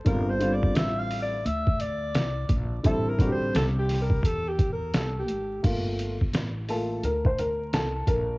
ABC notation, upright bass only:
X:1
M:4/4
L:1/8
Q:"Swing 16ths" 1/4=86
K:Gdor
V:1 name="Upright bass" clef=bass
G,,,2 A,,,2 D,,2 C,, B,,, | A,,,2 C,,2 E,,2 C,, _A,,, | G,,,2 A,,,2 D,,2 C,, B,,, |]